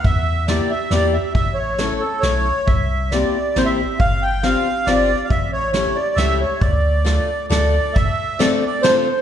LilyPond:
<<
  \new Staff \with { instrumentName = "Accordion" } { \time 3/4 \key d \minor \tempo 4 = 137 e''4 d''8 e''8 d''8 e''8 | e''8 cis''4 a'8 cis''4 | e''4 d''4 c''16 e''8. | f''8 g''8 f''4 d''8.~ d''32 f''32 |
e''8 cis''8 cis''8 d''8 e''8 cis''8 | d''2 d''4 | e''4 \tuplet 3/2 { d''8 d''8 d''8 c''8 c''8 c''8 } | }
  \new Staff \with { instrumentName = "Steel-string acoustic guitar" } { \time 3/4 \key d \minor r4 <bes d' e' g'>8 r8 <bes d' e' g'>8 r8 | r4 <a cis' e' a'>8 r8 <a cis' e' a'>8 r8 | r4 <bes c' e' g'>8 r8 <bes c' e' g'>8 r8 | r4 <c' d' f' g'>8 r8 <c' d' f' g'>8 r8 |
r4 <a cis' e' g'>8 r8 <a cis' e' g'>8 r8 | r4 <a d' f' a'>8 r8 <a d' f' a'>8 r8 | r4 <a c' d' f' a'>8 r8 <a c' d' f' a'>8 r8 | }
  \new Staff \with { instrumentName = "Sub bass" } { \clef bass \time 3/4 \key d \minor e,2 e,4 | a,,2 b,,4 | c,2 a,,4 | g,,2 g,,4 |
a,,2 cis,4 | d,2 d,4 | r2. | }
  \new DrumStaff \with { instrumentName = "Drums" } \drummode { \time 3/4 <hh bd>4 <hh sn>4 <hh sn>4 | <hh bd>4 <hh sn>4 <hh sn>4 | <hh bd>4 <hh sn>4 <hh sn>4 | <hh bd>4 <hh sn>4 <hh sn>4 |
<hh bd>4 <hh sn>4 <hh sn>4 | <hh bd>4 <hh sn>4 <hh sn>4 | <hh bd>4 <hh sn>4 <hh sn>4 | }
>>